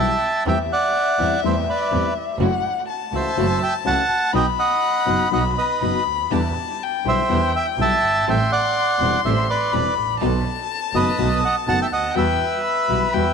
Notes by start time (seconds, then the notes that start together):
Already playing: B1 B2 E3 G3 B3 E4 G4 G5
0.00 B3 E4 E5 A5
0.45 E2 E3 G3 A3 C4 E4 G4 E5 G5
0.73 D5 F#5
1.18 E2 E3 G3 A3 C4 E4 G4
1.43 E2 E3 G3 A3 C4 E4 G4 C5 E5
1.69 B4 D5
1.90 E2 E3 G3 A3 C4 E4 G4
2.39 F#1 C#3 E3 A3 C#4 E4 F#4 F#5
2.89 A5
3.12 C#2 C#3 E3 A3 C#4 E4 F#4 E5
3.16 C5
3.36 F#1 C#3 E3 A3 C#4 E4 F#4
3.63 E5 G5
3.84 C#2 C#3 E3 A3 C#4 E4 F#4 F#5 A5
4.32 B1 B2 F#3 B3 D#4 F#4 D#5 G5 B5
4.59 D#5 F#5
5.05 F#1 B2 F#3 B3 D#4 F#4
5.30 B1 B2 F#3 B3 D#4 F#4 D#5 F#5
5.58 B4 D#5
5.81 F#1 B2 F#3 B3 D#4 F#4 B5
6.06 D2
6.30 E2 B2 D3 G3 B3 D4 E4 G4 A5
6.83 G5
7.04 B1 B2 D3 G3 B3 D4 E4 G4 C5
7.09 E5
7.28 E2 B2 D3 G3 B3 D4 E4 G4
7.56 E5 G5
7.78 B1 B2 D3 G3 B3 D4 E4 G4
7.82 E5 A5
8.02 G1
8.27 A1 E3 G3 C4 E4 G4 A4 E5 G5 C6
8.52 D5 F#5
8.99 E1 E3 G3 C4 E4 G4 A4
9.23 A1 E3 G3 C4 E4 G4 A4 C5 E5
9.50 B4 D5
9.72 E1 E3 G3 C4 E4 G4 A4 B5
9.96 A1
10.20 B1 B2 D#3 A3 B3 D#4 F#4 A4 A5
10.93 F#1 B2 D#3 A3 B3 D#4 F#4 A4 B4 D#5
11.17 B1 B2 D#3 A3 B3 D#4 F#4 A4
11.45 D#5 F#5
11.66 F#1 B2 D#3 A3 B3 D#4 F#4 A4 F#5 A5
11.82 E5 G5
11.91 D2 D#5 F#5
12.14 E2 B2 E3 G3 B3 E4 F#4 E5 G5
12.18 B4
12.64 B5
12.88 B1 B2 E3 G3 B3 E4 F#4
13.13 E2 B2 E3 G3 B3 E4 F#4 G5